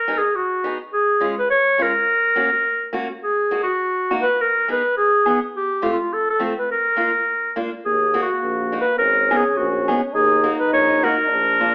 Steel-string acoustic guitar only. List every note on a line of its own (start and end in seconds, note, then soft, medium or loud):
0.08 0.20 B3 medium
0.08 0.20 D#4 medium
0.08 0.20 G#4 medium
0.64 0.77 B3 medium
0.64 0.77 D#4 soft
0.64 0.77 G#4 medium
1.21 1.34 G#3 medium
1.21 1.34 C#4 soft
1.21 1.34 F4 medium
1.78 1.91 G#3 medium
1.78 1.92 C#4 soft
1.78 1.92 F4 medium
2.36 2.49 A#3 medium
2.36 2.49 C#4 soft
2.36 2.49 F#4 medium
2.93 3.06 A#3 medium
2.93 3.07 C#4 medium
2.93 3.07 F#4 medium
3.51 3.65 A#3 medium
3.51 3.65 D#4 medium
3.51 3.65 F#4 medium
4.11 4.24 A#3 medium
4.11 4.24 D#4 soft
4.11 4.24 F#4 medium
4.68 4.81 B3 medium
4.68 4.81 D#4 soft
4.68 4.81 G#4 medium
5.26 5.39 B3 medium
5.26 5.39 D#4 medium
5.26 5.39 G#4 medium
5.82 5.95 A3 medium
5.82 5.95 C4 medium
5.82 5.96 F4 medium
6.39 6.52 A3 medium
6.39 6.53 C4 medium
6.39 6.53 F4 medium
6.96 7.10 A#3 medium
6.96 7.10 D#4 medium
6.96 7.11 F4 medium
7.56 7.69 A#3 medium
7.56 7.69 D4 medium
7.56 7.69 F4 medium
8.14 8.27 A#3 medium
8.14 8.27 D#4 medium
8.14 8.27 F#4 medium
8.72 8.85 A#3 medium
8.72 8.85 D#4 medium
8.72 8.85 F#4 medium
9.31 9.43 B3 medium
9.31 9.43 D#4 soft
9.31 9.43 G#4 medium
9.88 10.00 B3 medium
9.88 10.00 D#4 soft
9.88 10.00 G#4 medium
10.44 10.56 A#3 medium
10.44 10.57 D#4 medium
10.44 10.57 F#4 medium
11.03 11.15 A#3 medium
11.03 11.15 D#4 soft
11.03 11.15 F#4 medium
11.60 11.73 A#3 medium
11.60 11.73 D4 medium
11.60 11.73 F4 medium